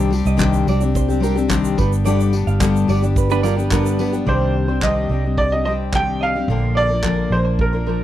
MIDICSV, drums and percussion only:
0, 0, Header, 1, 2, 480
1, 0, Start_track
1, 0, Key_signature, -3, "minor"
1, 0, Tempo, 552995
1, 1786, Time_signature, 4, 2, 24, 8
1, 6978, End_track
2, 0, Start_track
2, 0, Title_t, "Drums"
2, 109, Note_on_c, 9, 54, 66
2, 196, Note_off_c, 9, 54, 0
2, 225, Note_on_c, 9, 82, 46
2, 312, Note_off_c, 9, 82, 0
2, 336, Note_on_c, 9, 82, 65
2, 344, Note_on_c, 9, 36, 115
2, 350, Note_on_c, 9, 39, 124
2, 423, Note_off_c, 9, 82, 0
2, 431, Note_off_c, 9, 36, 0
2, 437, Note_off_c, 9, 39, 0
2, 463, Note_on_c, 9, 82, 48
2, 550, Note_off_c, 9, 82, 0
2, 589, Note_on_c, 9, 54, 77
2, 675, Note_off_c, 9, 54, 0
2, 702, Note_on_c, 9, 82, 43
2, 789, Note_off_c, 9, 82, 0
2, 826, Note_on_c, 9, 36, 120
2, 830, Note_on_c, 9, 82, 67
2, 913, Note_off_c, 9, 36, 0
2, 916, Note_off_c, 9, 82, 0
2, 954, Note_on_c, 9, 82, 39
2, 1041, Note_off_c, 9, 82, 0
2, 1070, Note_on_c, 9, 54, 57
2, 1075, Note_on_c, 9, 82, 44
2, 1157, Note_off_c, 9, 54, 0
2, 1162, Note_off_c, 9, 82, 0
2, 1194, Note_on_c, 9, 82, 55
2, 1281, Note_off_c, 9, 82, 0
2, 1305, Note_on_c, 9, 36, 103
2, 1308, Note_on_c, 9, 39, 111
2, 1311, Note_on_c, 9, 82, 65
2, 1391, Note_off_c, 9, 36, 0
2, 1394, Note_off_c, 9, 39, 0
2, 1398, Note_off_c, 9, 82, 0
2, 1428, Note_on_c, 9, 82, 56
2, 1515, Note_off_c, 9, 82, 0
2, 1544, Note_on_c, 9, 36, 101
2, 1549, Note_on_c, 9, 54, 68
2, 1631, Note_off_c, 9, 36, 0
2, 1636, Note_off_c, 9, 54, 0
2, 1674, Note_on_c, 9, 82, 49
2, 1760, Note_off_c, 9, 82, 0
2, 1788, Note_on_c, 9, 82, 80
2, 1875, Note_off_c, 9, 82, 0
2, 1911, Note_on_c, 9, 82, 49
2, 1998, Note_off_c, 9, 82, 0
2, 2021, Note_on_c, 9, 54, 68
2, 2108, Note_off_c, 9, 54, 0
2, 2150, Note_on_c, 9, 82, 46
2, 2237, Note_off_c, 9, 82, 0
2, 2262, Note_on_c, 9, 36, 117
2, 2266, Note_on_c, 9, 82, 74
2, 2267, Note_on_c, 9, 39, 117
2, 2349, Note_off_c, 9, 36, 0
2, 2352, Note_off_c, 9, 82, 0
2, 2354, Note_off_c, 9, 39, 0
2, 2396, Note_on_c, 9, 82, 46
2, 2483, Note_off_c, 9, 82, 0
2, 2508, Note_on_c, 9, 54, 69
2, 2595, Note_off_c, 9, 54, 0
2, 2631, Note_on_c, 9, 82, 41
2, 2718, Note_off_c, 9, 82, 0
2, 2745, Note_on_c, 9, 36, 126
2, 2751, Note_on_c, 9, 82, 69
2, 2832, Note_off_c, 9, 36, 0
2, 2838, Note_off_c, 9, 82, 0
2, 2867, Note_on_c, 9, 82, 38
2, 2954, Note_off_c, 9, 82, 0
2, 2982, Note_on_c, 9, 54, 65
2, 2995, Note_on_c, 9, 82, 47
2, 3069, Note_off_c, 9, 54, 0
2, 3082, Note_off_c, 9, 82, 0
2, 3116, Note_on_c, 9, 82, 50
2, 3202, Note_off_c, 9, 82, 0
2, 3224, Note_on_c, 9, 36, 102
2, 3224, Note_on_c, 9, 39, 98
2, 3227, Note_on_c, 9, 82, 62
2, 3311, Note_off_c, 9, 36, 0
2, 3311, Note_off_c, 9, 39, 0
2, 3314, Note_off_c, 9, 82, 0
2, 3349, Note_on_c, 9, 82, 54
2, 3436, Note_off_c, 9, 82, 0
2, 3463, Note_on_c, 9, 54, 71
2, 3550, Note_off_c, 9, 54, 0
2, 3587, Note_on_c, 9, 82, 50
2, 3674, Note_off_c, 9, 82, 0
2, 3704, Note_on_c, 9, 36, 81
2, 3791, Note_off_c, 9, 36, 0
2, 4183, Note_on_c, 9, 36, 96
2, 4186, Note_on_c, 9, 39, 105
2, 4270, Note_off_c, 9, 36, 0
2, 4273, Note_off_c, 9, 39, 0
2, 4666, Note_on_c, 9, 36, 106
2, 4753, Note_off_c, 9, 36, 0
2, 5146, Note_on_c, 9, 36, 99
2, 5151, Note_on_c, 9, 39, 97
2, 5232, Note_off_c, 9, 36, 0
2, 5237, Note_off_c, 9, 39, 0
2, 5626, Note_on_c, 9, 36, 84
2, 5713, Note_off_c, 9, 36, 0
2, 6104, Note_on_c, 9, 36, 97
2, 6108, Note_on_c, 9, 39, 102
2, 6190, Note_off_c, 9, 36, 0
2, 6195, Note_off_c, 9, 39, 0
2, 6588, Note_on_c, 9, 36, 110
2, 6674, Note_off_c, 9, 36, 0
2, 6978, End_track
0, 0, End_of_file